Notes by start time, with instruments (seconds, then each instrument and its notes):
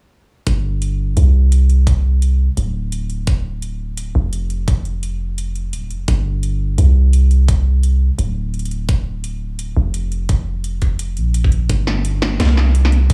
0.47 808-style bass G1, kick, closed hi-hat
0.82 closed hi-hat
1.17 808-style bass C2, closed hi-hat
1.52 closed hi-hat
1.70 closed hi-hat
1.87 kick, closed hi-hat
2.22 closed hi-hat
2.57 808-style bass D1, closed hi-hat
2.92 closed hi-hat
3.10 closed hi-hat
3.27 kick, closed hi-hat
3.62 closed hi-hat
3.97 closed hi-hat
4.15 808-style bass F1
4.33 closed hi-hat
4.50 closed hi-hat
4.68 kick, closed hi-hat
4.85 closed hi-hat
5.03 closed hi-hat
5.38 closed hi-hat
5.55 closed hi-hat
5.73 808-style bass D1, closed hi-hat
5.90 808-style bass F1, closed hi-hat
6.08 808-style bass G1, kick, closed hi-hat
6.43 closed hi-hat
6.78 808-style bass C2, closed hi-hat
7.13 closed hi-hat
7.31 closed hi-hat
7.48 kick, closed hi-hat
7.83 closed hi-hat
8.18 808-style bass D1, closed hi-hat
8.54 closed hi-hat
8.59 closed hi-hat
8.65 closed hi-hat
8.71 closed hi-hat
8.89 kick, closed hi-hat
9.24 closed hi-hat
9.59 closed hi-hat
9.77 808-style bass F1
9.94 closed hi-hat
10.12 closed hi-hat
10.29 kick, closed hi-hat
10.64 closed hi-hat
10.82 kick, closed hi-hat
10.99 closed hi-hat
11.17 808-style bass A#1, closed hi-hat
11.34 closed hi-hat
11.44 kick
11.52 closed hi-hat
11.69 808-style bass G1, kick, closed hi-hat
11.87 snare
12.05 closed hi-hat
12.22 snare
12.39 808-style bass C2, snare, closed hi-hat
12.57 snare
12.75 closed hi-hat
12.85 snare
12.92 closed hi-hat
13.10 kick, closed hi-hat